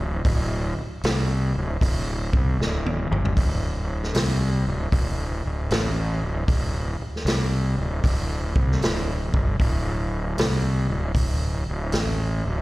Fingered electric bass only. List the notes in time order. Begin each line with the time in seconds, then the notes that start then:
0.00 D1
0.25 D1
0.78 muted fingered electric bass stroke
1.04 C2
1.55 D1
1.81 D1
2.33 C2
2.59 D1
3.11 G1
3.37 D1
4.15 C2
4.67 D1
4.92 D1
5.45 D1
5.71 A1
6.22 D1
6.48 D1
7.00 muted fingered electric bass stroke
7.25 C2
7.78 D1
8.04 D1
8.55 C2
8.81 D1
9.34 G1
9.60 D1
10.38 C2
10.90 D1
11.15 D1
11.68 D1
11.93 A1
12.45 D1